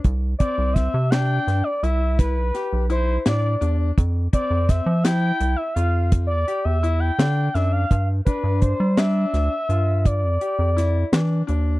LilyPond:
<<
  \new Staff \with { instrumentName = "Analog synth lead" } { \time 11/8 \key f \lydian \tempo 4 = 84 r8 d''8 e''8 g''8. d''16 e''8 b'4 c''8 d''8. r16 | r8 d''8 e''8 g''8. e''16 f''8 r16 d''8 e''8 g''8. e''16 f''16~ | f''16 r16 b'8 c''8 e''4. d''2 r8 | }
  \new Staff \with { instrumentName = "Grand piano" } { \time 11/8 \key f \lydian r8 c'4 d'4 e'4 g'8 e'8 d'8 d'8 | r8 c'4 e'4 f'4 g'8 e'8 d'8 d'8 | r8 d'4 d'4 f'4 g'8 e'8 d'8 d'8 | }
  \new Staff \with { instrumentName = "Analog synth bass" } { \clef bass \time 11/8 \key f \lydian c,8 r16 c,8 c8. g,16 r16 c,8. b,,16 r16 b,,8. a,8 e,8 | f,8 r16 f,8 f8. c,16 r16 f,8. e,16 r16 e,8. d8 fis,8 | g,8 r16 g,8 g8. d,16 r16 g,8. f,16 r16 f,8. e8 ees,8 | }
  \new DrumStaff \with { instrumentName = "Drums" } \drummode { \time 11/8 <hh bd>8 <hh bd>8 <hh bd sn>8 <hh sn>8 <hh sn>8 hh8 <hh bd sn>8 <hh sn>8 hh8 <hh sn>8 hh8 | <hh bd>8 <hh bd>8 <hh bd sn>8 <hh sn>8 hh8 hh8 <hh bd>8 hh8 hh8 <hh sn>8 <hh sn>8 | <hh bd>8 <hh bd>8 <hh bd>8 <hh sn>8 <hh sn>8 hh8 <hh bd>8 hh8 <hh sn>8 <hh sn>8 hh8 | }
>>